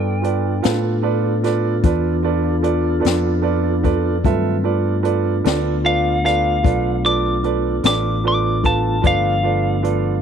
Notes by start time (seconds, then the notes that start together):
Already playing: G2 B3 D4 F4 A4 B4 D5 G5
0.22 F4 A4 B4 D5, closed hi-hat
0.62 A2 F4 A4 B4 F5, snare, closed hi-hat
1.02 F4 A4 B4 D5
1.43 F4 A4 B4 D5, snare, closed hi-hat
1.83 E2 F4 A4 B4 D5, kick, closed hi-hat
2.23 F4 A4 B4 D5
2.62 F4 A4 B4 D5, closed hi-hat
3.00 F4 A4 B4 D5
3.05 F2, snare, closed hi-hat
3.42 F4 A4 B4 D5
3.83 F4 A4 B4 D5, kick, closed hi-hat
4.23 G2 D#3 F#3 A3 C4 F4 A4 B4 E5, kick, closed hi-hat
4.63 A3 B3 D4 F4 A4 B4 D5
5.03 F4 A4 B4 D5, closed hi-hat
5.44 D2 F4 A4 B4 D5, snare, closed hi-hat
5.84 F4 A4 B4 D5 F5
6.24 F4 A4 B4 D5 F5, snare, closed hi-hat
6.63 B1 F4 A4 B4 D5, kick, closed hi-hat
7.05 F4 A4 B4 D5 D6
7.43 F4 A4 B4 D5, closed hi-hat
7.83 A1 F4 A4 B4 D5 D6, snare, closed hi-hat
8.24 F4 A4 B4 D5 D6
8.63 F4 A4 B4 F5 A5, kick, closed hi-hat
9.01 G1 F3 A3 B3 D4 F4 A4 B4 D5, kick, closed hi-hat
9.07 F5
9.43 F4 A4 B4 D5
9.83 F4 A4 B4 D5, closed hi-hat